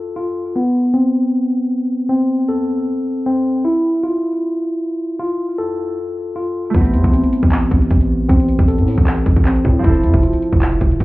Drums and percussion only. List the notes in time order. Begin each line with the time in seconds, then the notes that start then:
6.74 kick, closed hi-hat
6.85 closed hi-hat
6.94 closed hi-hat
7.04 kick, closed hi-hat
7.13 closed hi-hat
7.24 closed hi-hat
7.33 closed hi-hat
7.43 kick
7.52 clap, closed hi-hat
7.62 closed hi-hat
7.71 kick, closed hi-hat
7.82 closed hi-hat
7.90 kick, closed hi-hat
8.01 closed hi-hat
8.29 kick, closed hi-hat
8.40 closed hi-hat
8.48 closed hi-hat
8.59 kick, closed hi-hat
8.68 closed hi-hat
8.78 closed hi-hat
8.87 open hi-hat
8.98 kick
9.07 clap, closed hi-hat
9.17 closed hi-hat
9.26 kick, closed hi-hat
9.36 kick, closed hi-hat
9.45 clap, closed hi-hat
9.56 closed hi-hat
9.65 kick
9.84 kick, closed hi-hat
9.94 closed hi-hat
10.03 closed hi-hat
10.14 kick, closed hi-hat
10.23 closed hi-hat
10.33 closed hi-hat
10.42 closed hi-hat
10.53 kick
10.62 clap, closed hi-hat
10.72 closed hi-hat
10.81 kick, closed hi-hat
10.91 closed hi-hat
11.00 kick, closed hi-hat